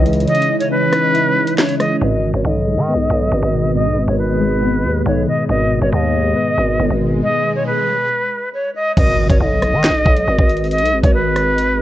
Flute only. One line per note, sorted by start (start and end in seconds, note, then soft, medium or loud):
0.27 0.58 D#5 loud
0.60 0.68 C#5 medium
0.71 1.54 B4 loud
1.58 1.75 C#5 loud
1.80 1.96 D#5 medium
2.01 2.32 D#5 loud
2.34 2.42 C#5 medium
2.45 3.71 D#5 loud
3.75 4.06 D#5 loud
4.08 4.16 C#5 medium
4.19 5.02 B4 medium
5.06 5.22 C#5 medium
5.28 5.44 D#5 loud
5.49 5.80 D#5 loud
5.82 5.90 C#5 medium
5.93 6.92 D#5 medium
7.23 7.54 D#5 loud
7.56 7.64 C#5 medium
7.66 8.49 B4 medium
8.53 8.70 C#5 medium
8.75 8.92 D#5 medium
8.97 9.28 D#5 loud
9.30 9.38 C#5 medium
9.40 10.67 D#5 loud
10.71 11.02 D#5 loud
11.03 11.12 C#5 medium
11.14 11.82 B4 loud